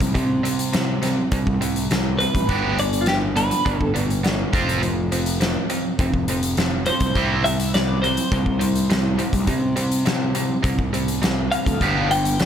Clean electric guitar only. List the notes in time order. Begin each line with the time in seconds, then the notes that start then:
2.19 B4
2.80 D5
3.01 F4
3.08 G4
3.37 B4
3.79 A4
6.87 C5
7.44 E5
7.74 D5
8.02 C5
11.52 F5
12.11 G5